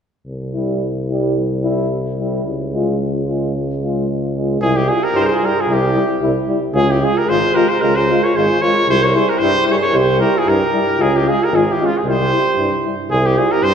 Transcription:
0.26 tuba C2
0.54 euphonium G3, trombone E4
1.08 euphonium G3, trombone E4
1.62 euphonium G3, trombone E4
2.19 euphonium G3, trombone E4
2.44 tuba C#2
2.73 euphonium G#3, trombone F4
3.27 euphonium G#3, trombone F4
3.80 euphonium G#3, trombone F4
4.35 euphonium G#3, trombone F4
4.60 tuba C2, euphonium G3, alto saxophone E4, trombone E4, trumpet G#4
4.76 alto saxophone E4, trumpet G4
4.87 euphonium G3, trombone E4, alto saxophone F4, trumpet G#4
5.03 alto saxophone G4, trumpet A#4
5.14 tuba G2, euphonium G3, trombone E4, alto saxophone G4, trumpet C5
5.19 alto saxophone G4, trumpet A#4
5.24 alto saxophone G#4, trumpet C5
5.31 alto saxophone F4, trumpet G#4
5.42 euphonium G3, trombone E4, alto saxophone G4, trumpet A#4
5.58 alto saxophone F4, trumpet G#4
5.67 tuba C2, euphonium G3, trombone E4
5.72 alto saxophone E4, trumpet G4
5.94 euphonium G3, trombone E4
6.21 tuba C2, euphonium G3, trombone E4
6.48 euphonium G3, trombone E4
6.73 tuba C#2, euphonium G#3, alto saxophone F4, trombone F4, trumpet G#4
6.89 alto saxophone E4, trumpet G4
7.01 euphonium G#3, alto saxophone F4, trombone F4, trumpet G#4
7.17 alto saxophone G4, trumpet A#4
7.27 tuba G#1, euphonium G#3, trombone F4, alto saxophone G#4, trumpet C5
7.54 euphonium G#3, trombone F4, alto saxophone G4, trumpet A#4
7.68 alto saxophone G#4, trumpet C5
7.81 tuba C#2, euphonium G#3, alto saxophone F4, trombone F4, trumpet A#4
7.96 alto saxophone G#4, trumpet C5
8.10 euphonium G#3, trombone F4
8.23 alto saxophone A#4, trumpet C#5
8.35 tuba G#1, euphonium G#3, trombone F4, alto saxophone G#4, trumpet C5
8.61 euphonium G#3, trombone F4, alto saxophone A#4, trumpet C#5
8.88 tuba C2, euphonium G3, trombone E4, alto saxophone G4, trumpet C5
9.02 alto saxophone A#4, trumpet C#5
9.14 euphonium G3, trombone E4, alto saxophone G#4, trumpet C5
9.29 alto saxophone G4, trumpet A#4
9.39 tuba G2, trombone E4, alto saxophone G4, trumpet C5
9.43 euphonium G3
9.67 euphonium G3, trombone E4, alto saxophone G#4, trumpet C5
9.72 alto saxophone A#4, trumpet C5 C#5
9.79 alto saxophone G#4, trumpet C#5
9.84 alto saxophone A#4
9.93 tuba C2, euphonium G3, trombone E4, alto saxophone G4, trumpet C5
10.20 euphonium G3, trombone E4, alto saxophone G4, trumpet A#4
10.37 alto saxophone F4, trumpet G#4
10.47 tuba G2, euphonium G3, trombone E4, alto saxophone G4, trumpet A#4
10.73 euphonium G3, trombone E4
10.98 tuba C#2, euphonium G#3, trombone F4, trumpet G#4
11.03 alto saxophone F4
11.17 alto saxophone E4, trumpet G4
11.26 euphonium G#3, trombone F4, alto saxophone F4, trumpet G#4
11.44 alto saxophone G4, trumpet A#4
11.52 tuba G#1, euphonium G#3, trombone F4, alto saxophone F4, trumpet G#4
11.71 alto saxophone E4, trumpet G4
11.80 euphonium G#3, alto saxophone C#4, trombone F4
11.86 trumpet F4
11.94 alto saxophone F4, trumpet G#4
12.04 tuba C2, euphonium G3, trombone E4
12.08 alto saxophone G4, trumpet C5
12.32 euphonium G3, trombone E4
12.57 tuba G2, euphonium G3, trombone E4
12.84 euphonium G3, trombone E4
13.10 tuba C2, alto saxophone E4, trumpet G#4
13.25 alto saxophone E4, trumpet G4
13.37 euphonium G3, trombone E4, alto saxophone F4, trumpet G#4
13.51 alto saxophone G4, trumpet A#4
13.62 tuba G2, alto saxophone G4, trumpet C5

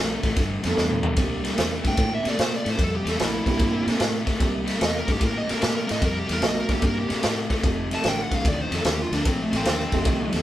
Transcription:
Already playing: fingered electric bass A#1, overdriven electric guitar C3 A3, grand piano A#3 D4 E4 G4
0.23 fingered electric bass A1, overdriven electric guitar C3 A3, kick, snare, ride
0.36 fingered electric bass G1, overdriven electric guitar G2 D3, kick, snare, ride
0.62 fingered electric bass F2, overdriven electric guitar G2 F3, grand piano B3 D4, snare, ride
0.66 grand piano F4 A4
0.77 fingered electric bass E2, overdriven electric guitar G2 E3, snare
0.90 mid tom
1.03 overdriven electric guitar G2 E3, floor tom
1.16 fingered electric bass C2, overdriven electric guitar C3 G3, grand piano A#3 C4 D4 E4, kick, snare, ride
1.21 grand piano G4
1.44 overdriven electric guitar C3 G3, snare, ride
1.57 fingered electric bass E2, overdriven electric guitar C3 A3, snare, ride
1.84 fingered electric bass G2, overdriven electric guitar C3 A3, kick, snare, ride
1.88 lead electric guitar G5
1.97 fingered electric bass A2, overdriven electric guitar C3 A#3, kick, snare, ride
2.14 lead electric guitar E5
2.23 overdriven electric guitar C3 A#3, fingered electric bass C3, snare, ride
2.28 lead electric guitar D5
2.37 fingered electric bass A#2, overdriven electric guitar C3 A3, snare, ride
2.42 lead electric guitar C5
2.56 lead electric guitar D5
2.64 fingered electric bass A2, overdriven electric guitar C3 A3, snare, ride
2.70 lead electric guitar C5
2.76 fingered electric bass F2, overdriven electric guitar C3 G3, kick, snare, ride
2.84 lead electric guitar A4
2.96 lead electric guitar G4
3.04 fingered electric bass E2, overdriven electric guitar C3 G3, snare, ride
3.09 lead electric guitar A4
3.17 fingered electric bass A#1, overdriven electric guitar C3 A3, snare, ride
3.22 lead electric guitar E4
3.44 fingered electric bass C2, overdriven electric guitar C3 A3, grand piano A#3 C4 D4 E4 G4, kick, snare, ride
3.56 fingered electric bass G2, overdriven electric guitar C3 A#3, kick, ride
3.60 snare
3.83 fingered electric bass A#2, overdriven electric guitar C3 A#3
3.88 snare, ride
3.97 fingered electric bass A2, overdriven electric guitar C3 A3, snare, ride
4.25 overdriven electric guitar C3 A3, kick, snare, ride
4.39 fingered electric bass C2, overdriven electric guitar C3 G3, grand piano A#3 C4 D4 E4 G4, kick, snare, ride
4.65 overdriven electric guitar C3 G3, snare, ride
4.79 fingered electric bass E2, overdriven electric guitar C3 A3, snare, ride
4.85 lead electric guitar D#5
4.98 lead electric guitar A#4
5.07 fingered electric bass G2, overdriven electric guitar C3 A3, kick, snare, ride
5.12 lead electric guitar G4
5.19 fingered electric bass A2, overdriven electric guitar C3 A#3, kick, snare, ride
5.26 lead electric guitar A#4
5.38 lead electric guitar D#5
5.47 overdriven electric guitar C3 A#3, fingered electric bass C3, lead electric guitar A#4, snare, ride
5.60 fingered electric bass A#2, overdriven electric guitar C3 A3, lead electric guitar G4, snare, ride
5.75 lead electric guitar A#4
5.87 overdriven electric guitar C3 A3, snare, ride
5.91 fingered electric bass A2, lead electric guitar D#5
6.01 fingered electric bass F2, overdriven electric guitar C3 G3, lead electric guitar A#4, kick, snare, ride
6.19 lead electric guitar G4
6.27 fingered electric bass E2, overdriven electric guitar C3 G3, snare, ride
6.33 lead electric guitar A#4
6.42 fingered electric bass A#1, overdriven electric guitar C3 A3, grand piano A3 B3 C#4 D#4 F#4, snare, ride
6.46 lead electric guitar D#5
6.59 lead electric guitar A#4
6.69 fingered electric bass C2, overdriven electric guitar C3 A3, grand piano A#3 C4 D4 E4 G4, lead electric guitar G4, kick, snare, ride
6.82 fingered electric bass G2, overdriven electric guitar C3 A#3, kick, snare, ride
6.87 lead electric guitar A#4
7.00 lead electric guitar G4
7.08 fingered electric bass A#2, overdriven electric guitar C3 A#3, snare, ride
7.22 fingered electric bass A2, overdriven electric guitar C3 A3, snare, ride
7.49 overdriven electric guitar C3 A3, kick, snare, ride
7.63 fingered electric bass F1, overdriven electric guitar F2 C3, grand piano A3 C4 D#4 F4 G4, kick, snare, ride
7.91 overdriven electric guitar F2 C3, lead electric guitar A5, snare, ride
8.04 fingered electric bass A1, overdriven electric guitar F2 D3, snare, ride
8.09 lead electric guitar G5
8.22 lead electric guitar F#5
8.31 fingered electric bass C2, overdriven electric guitar F2 D3, lead electric guitar F5, kick, snare, ride
8.45 fingered electric bass D2, overdriven electric guitar F2 D#3, lead electric guitar D5, kick, snare, ride
8.61 lead electric guitar C5
8.71 overdriven electric guitar F2 D#3, fingered electric bass F2, lead electric guitar A4, snare, ride
8.85 fingered electric bass D#2, overdriven electric guitar F2 D3, snare, ride
8.89 lead electric guitar G4
9.02 lead electric guitar F4
9.12 fingered electric bass D2, overdriven electric guitar F2 D3, lead electric guitar D4, snare, ride
9.25 fingered electric bass A#1, overdriven electric guitar F2 C3, lead electric guitar C4, kick, snare, ride
9.42 lead electric guitar A3
9.51 fingered electric bass A1, overdriven electric guitar F2 C3, snare, ride
9.56 lead electric guitar C4
9.64 fingered electric bass D#2, overdriven electric guitar F2 D3, snare, ride
9.92 fingered electric bass F1, overdriven electric guitar F2 D3, grand piano A3 C4 D#4 F4 G4, kick, snare, ride
10.05 fingered electric bass C2, overdriven electric guitar F2 D#3, kick, snare, ride
10.32 fingered electric bass D#2, overdriven electric guitar F2 D#3, snare, ride

